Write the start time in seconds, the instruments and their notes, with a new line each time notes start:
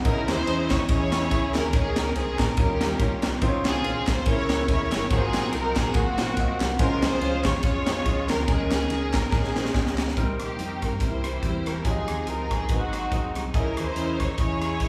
0.03 fingered electric bass C#2, grand piano C#3 C#4 D#4 G#4 D#5, tonewheel organ E3 C#4 G#4 D#5, string section D#4 E4 A#4, kick, ride bell
0.10 grand piano E4
0.27 fingered electric bass D#2, string section D#4 E4 C5, snare, clap, ride bell
0.46 fingered electric bass E2, grand piano C#4 D#4 G#4 D#5, ride bell
0.52 grand piano E4
0.70 fingered electric bass D#2, string section C#5, kick, snare, clap, ride bell
0.88 fingered electric bass E2, grand piano C#4 E4 G#4 D#5, string section E4 G#4 C#5, kick, ride bell
1.11 grand piano C#4 E4 G#4 D#5, snare, clap, ride bell
1.30 fingered electric bass C#2, grand piano C#4 E4 G#4 E5, kick, ride bell
1.54 fingered electric bass D2, string section A#4, snare, clap, ride bell
1.72 fingered electric bass D#2, tonewheel organ D#3 A#3 C#4 G4, grand piano D#3 A#3 D#4 G#4 C#5, string section C#4 G#4, kick, ride bell
1.78 tonewheel organ G#4
1.96 fingered electric bass C#2, string section A#4, snare, clap, ride bell
2.15 fingered electric bass C2, grand piano A#3 D#4 G#4 C5, string section G#4, ride bell
2.39 fingered electric bass A#1, string section A#4, kick, snare, clap, ride bell
2.57 fingered electric bass D#2, tonewheel organ D#3 G3 C#4 F4, grand piano D#3 G3 D#4 F4 C#5, string section C#4 G4 A#4, kick, ride bell
2.80 grand piano G3 D#4 F4 G4, snare, clap, ride bell
2.99 fingered electric bass A#1, grand piano G3 D#4 F4 C#5, kick, ride bell
3.22 fingered electric bass C2, snare, clap, ride bell
3.41 fingered electric bass C#2, tonewheel organ C#3 D#3 C4 F4, grand piano C#3 C4 D#4 F4 C5, kick, ride bell
3.48 grand piano C#5
3.65 fingered electric bass C2, string section C4 F4 G#4, snare, clap, ride bell
3.83 fingered electric bass A#1, grand piano C4 D#4 F4 C#5, ride bell
4.07 fingered electric bass C2, string section C5, kick, snare, clap, ride bell
4.26 fingered electric bass C#2, grand piano C#3 A#3 E4 G#4 C#5, tonewheel organ E3 A#3 C#4 G#4, string section E4 A#4 C#5, kick, ride bell
4.49 grand piano A#3 E4 G#4 A#4, snare, clap, ride bell
4.68 fingered electric bass D#2, grand piano A#3 E4 G#4 D#5, string section E4 A#4 C#5, kick, ride bell
4.75 grand piano E5
4.92 fingered electric bass G1, snare, clap, ride bell
5.10 fingered electric bass G#1, grand piano G#2 A#3 F4 F#4 A#4, tonewheel organ F#3 A#3 C4 F#4, string section C4 D#4 G#4, kick, ride bell
5.17 grand piano C5
5.34 fingered electric bass A#1, snare, clap, ride bell
5.52 fingered electric bass C2, grand piano A#3 F4 F#4 A4, string section A#4, ride bell
5.59 grand piano A#4
5.76 fingered electric bass A#1, string section G#4, kick, snare, clap, ride bell
5.94 fingered electric bass G#1, grand piano A#3 F4 F#4 G#4, string section A#3 C4 F#4, kick, ride bell
6.18 fingered electric bass A#1, grand piano A#3 F4 F#4 C5, snare, clap, ride bell
6.37 fingered electric bass C2, grand piano A#3 F4 F#4 D#5, kick, ride bell
6.60 fingered electric bass C2, snare, clap, ride bell
6.79 fingered electric bass C#2, grand piano C#3 G#3 C#4 F4 C5, tonewheel organ F3 G#3 C#4 G#4, string section F4 A#4, kick, ride bell
7.02 fingered electric bass C2, string section F4 G#4 C5, snare, clap, ride bell
7.21 fingered electric bass C#2, grand piano G#3 C#4 F4 C#5, ride bell
7.44 fingered electric bass D#2, string section C#5, kick, snare, clap, ride bell
7.63 fingered electric bass F2, grand piano G#3 C#4 F4 C#5, string section F4 G#4 C#5, kick, ride bell
7.87 grand piano G#3 C#4 F4 C5, snare, clap, ride bell
8.06 fingered electric bass C#2, grand piano G#3 C#4 F4 D#5, kick, ride bell
8.28 fingered electric bass D2, string section A#4, snare, clap, ride bell
8.47 fingered electric bass D#2, grand piano D#3 G3 C#4 D#4 A#4, tonewheel organ D#3 A#3 C#4 G#4, string section C#4 G#4, kick, ride bell
8.52 grand piano G#3
8.71 fingered electric bass C#2, string section G#4, snare, clap, ride bell
8.89 fingered electric bass C#2, grand piano G#3 C#4 D#4 A#4, string section G#4, ride bell
9.13 fingered electric bass G#1, string section A#4, kick, snare, clap, ride bell
9.32 fingered electric bass A#1, grand piano G#3 C#4 D#4 A#4, string section C#4 G#4, kick, snare
9.44 snare
9.56 grand piano G#3 C#4 D#4 C5, snare, clap
9.65 snare
9.74 fingered electric bass C#2, grand piano G#3 C#4 D#4 G4, kick, snare
9.86 snare
9.98 snare, clap
10.08 snare
10.16 fingered electric bass C2, grand piano C3 G3 C4 D#4 A#4, tonewheel organ D#3 A#3 C4 G4, french horn section D#3 A#3 C4, kick, closed hi-hat
10.39 fingered electric bass A#1, string section A#3 D#4 G4, cross-stick, closed hi-hat
10.58 fingered electric bass F2, grand piano G3 C4 D#4 A#4, closed hi-hat
10.82 fingered electric bass G2, string section A#4, kick, cross-stick, closed hi-hat
11.00 fingered electric bass C2, grand piano C3 G3 C4 D#4 A#4, french horn section E3 A#3, tonewheel organ E3 A#3 C4 G4, string section E4 G4 C5, kick, closed hi-hat
11.07 grand piano E4
11.24 cross-stick, closed hi-hat
11.43 fingered electric bass E2, grand piano G3 C4 E4 G4, string section C5, kick, closed hi-hat
11.66 fingered electric bass E1, string section A#4, cross-stick, closed hi-hat
11.84 fingered electric bass F2, french horn section F3 G#3 D#4, tonewheel organ F3 G#3 D#4 G5, grand piano G#3 F4 G4 C#5, string section C4 D#4 G#4, kick, closed hi-hat
11.91 grand piano D#5
12.08 fingered electric bass D#2, cross-stick, closed hi-hat
12.27 fingered electric bass C#2, grand piano G#3 F4 G4 D#5, string section A#4, closed hi-hat
12.51 fingered electric bass C2, string section G#4, kick, cross-stick, closed hi-hat
12.69 fingered electric bass G#1, grand piano G#2 B3 F#4 G#4 D#5, french horn section F#3 C4, tonewheel organ F#3 C4 D#4 G#4, string section C4 D#4 F#4, kick, closed hi-hat
12.74 grand piano C4
12.93 cross-stick, closed hi-hat
13.11 fingered electric bass F1, grand piano C4 F#4 G#4 D#5, kick, closed hi-hat
13.35 fingered electric bass C2, cross-stick, closed hi-hat
13.54 fingered electric bass C#2, grand piano C#3 C#4 E4 G#4 D#5, tonewheel organ D#3 C#4 G#4 D#5, french horn section E3 C#4 D#5, string section D#4 E4 A#4, kick, closed hi-hat
13.59 tonewheel organ E3
13.77 fingered electric bass D#2, string section D#4 E4 C5, cross-stick, closed hi-hat
13.96 fingered electric bass E2, grand piano C#4 E4 G#4 A#4, closed hi-hat
14.20 fingered electric bass D#2, string section C#5, kick, cross-stick, closed hi-hat
14.38 fingered electric bass E2, grand piano C#4 E4 G#4 D#5, string section E4 G#4 C#5, kick, closed hi-hat
14.62 cross-stick, closed hi-hat
14.80 fingered electric bass C#2, grand piano C#4 E4 G#4 D#5, kick, closed hi-hat